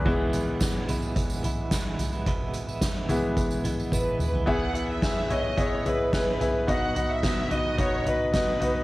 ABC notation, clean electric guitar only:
X:1
M:4/4
L:1/16
Q:1/4=109
K:E
V:1 name="Clean electric guitar" clef=bass
[E,,B,,E,G,B,E]3 [E,G,B,E]3 [E,G,B,E]4 [E,G,B,E]2 [E,G,B,E]3 [E,G,B,E] | [E,,B,,E,G,B,E]3 [E,G,B,E]3 [E,G,B,E]4 [E,G,B,E]2 [E,G,B,E]3 [E,G,B,E] | z16 | z16 |]